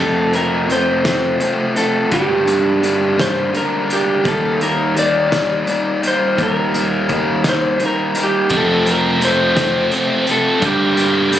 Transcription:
Already playing: overdriven electric guitar F2
0.00 picked electric bass F2, overdriven electric guitar C3 F3 A3 C4, clean electric guitar A4
0.33 overdriven electric guitar F3 A3 C4, clean electric guitar A#4, closed hi-hat
0.67 overdriven electric guitar C3 F3 A3, closed hi-hat
0.71 overdriven electric guitar C4, clean electric guitar C5
1.04 overdriven electric guitar F3 A3 C4, snare, closed hi-hat
1.40 overdriven electric guitar C3 F3 A3 C4, closed hi-hat
1.75 overdriven electric guitar F3 A3 C4, clean electric guitar A4, closed hi-hat
2.11 overdriven electric guitar G2 D3 G3 A#3 D4, picked electric bass G2, clean electric guitar G4, kick, closed hi-hat
2.45 overdriven electric guitar G3 A#3 D4, closed hi-hat
2.81 overdriven electric guitar D3 G3 A#3 D4, closed hi-hat
3.18 overdriven electric guitar G3 A#3 D4, clean electric guitar C5, snare, closed hi-hat
3.53 overdriven electric guitar D3 G3 A#3 D4, clean electric guitar A#4, closed hi-hat
3.88 overdriven electric guitar G3 A#3 D4, closed hi-hat
3.93 clean electric guitar G4
4.22 picked electric bass D#2, overdriven electric guitar D#3 G3 A#3 D#4, kick, closed hi-hat
4.28 clean electric guitar A4
4.59 overdriven electric guitar G3 A#3 D#4, clean electric guitar A#4, closed hi-hat
4.94 overdriven electric guitar D#3 G3 A#3 D#4, closed hi-hat
4.99 clean electric guitar D5
5.31 overdriven electric guitar G3 A#3 D#4, snare, closed hi-hat
5.65 overdriven electric guitar D#3 G3 A#3 D#4, closed hi-hat
6.02 overdriven electric guitar G3 A#3 D#4, closed hi-hat
6.07 clean electric guitar C5
6.37 picked electric bass D#2, overdriven electric guitar D#3 G3 A#3 D#4, kick, closed hi-hat
6.43 clean electric guitar A#4
6.74 overdriven electric guitar G3 A#3 D#4, closed hi-hat
7.09 overdriven electric guitar D#3 G3 A#3 D#4, kick, closed hi-hat
7.44 overdriven electric guitar G3 A#3 D#4, snare, closed hi-hat
7.49 clean electric guitar C5
7.78 overdriven electric guitar D#3 G3 A#3 D#4, closed hi-hat
7.86 clean electric guitar A#4
8.14 overdriven electric guitar G3 A#3 D#4, closed hi-hat
8.23 clean electric guitar G4
8.49 overdriven electric guitar F2 C3 F3 A3 C4, picked electric bass F2, kick, closed hi-hat
8.57 clean electric guitar A4
8.85 distorted electric guitar C3, overdriven electric guitar F3 A3 C4, closed hi-hat
8.91 clean electric guitar A#4
9.20 overdriven electric guitar C3 F3 A3 C4, closed hi-hat
9.25 clean electric guitar C5
9.55 distorted electric guitar C3, overdriven electric guitar F3 A3 C4, snare, closed hi-hat
9.91 overdriven electric guitar C3 F3 A3 C4, closed hi-hat
10.25 distorted electric guitar C3, overdriven electric guitar F3 A3 C4, closed hi-hat
10.31 clean electric guitar A4
10.60 overdriven electric guitar G2 D3 G3 A#3 D4, picked electric bass G2, kick, closed hi-hat
10.65 clean electric guitar G4
10.95 distorted electric guitar D3, overdriven electric guitar G3 A#3 D4, closed hi-hat
11.31 overdriven electric guitar D3 G3 A#3 D4, closed hi-hat

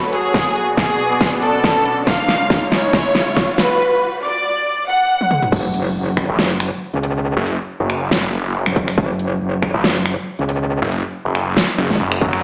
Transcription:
Already playing: analog synth pad F#3 F#4 A4 C#5, riser
0.13 violin section G#4, closed hi-hat
0.34 analog synth pad B2 B3 D5, kick, snare
0.56 closed hi-hat
0.77 violin section G#4, kick, snare
0.99 closed hi-hat
1.21 kick, snare
1.42 violin section A4, closed hi-hat
1.64 kick, snare
1.85 closed hi-hat
2.07 analog synth pad C#3 G#3 F4 C#5, violin section F5, kick, snare
2.29 snare, closed hi-hat
2.50 kick, snare
2.72 violin section C#5, snare, closed hi-hat
2.93 kick, snare
3.15 snare, closed hi-hat
3.36 kick, snare
3.58 violin section B4, snare, closed hi-hat
4.23 violin section D5
4.88 violin section F#5
5.21 high tom
5.31 mid tom
5.43 mid tom
5.52 wobble bass F#1, kick, crash, impact
5.74 closed hi-hat
5.95 wobble bass F#1
6.17 finger snap, kick, closed hi-hat
6.29 detuned saw bass A1
6.39 wobble bass F#1, snare
6.60 finger snap, closed hi-hat
6.93 wobble bass C#2, closed hi-hat
7.03 closed hi-hat
7.37 detuned saw bass F#1
7.47 closed hi-hat
7.80 detuned saw bass F#1
7.90 finger snap, closed hi-hat
8.11 wobble bass F#1, snare
8.23 detuned saw bass F#1
8.33 closed hi-hat
8.66 wobble bass F#1, finger snap, closed hi-hat
8.76 kick, closed hi-hat
8.88 finger snap
8.98 wobble bass F#1, kick
9.19 closed hi-hat
9.41 wobble bass F#1
9.62 finger snap, kick, closed hi-hat
9.74 detuned saw bass A1
9.84 wobble bass F#1, snare
10.06 finger snap, closed hi-hat
10.39 wobble bass C#2, closed hi-hat
10.49 closed hi-hat
10.82 detuned saw bass F#1
10.92 closed hi-hat
11.25 detuned saw bass F#1
11.35 finger snap, closed hi-hat
11.57 snare
11.78 detuned saw bass F#1, closed hi-hat
11.90 wobble bass G#1, snare
12.00 detuned saw bass F#1
12.12 finger snap, closed hi-hat
12.21 detuned saw bass F#2, kick, closed hi-hat
12.33 finger snap

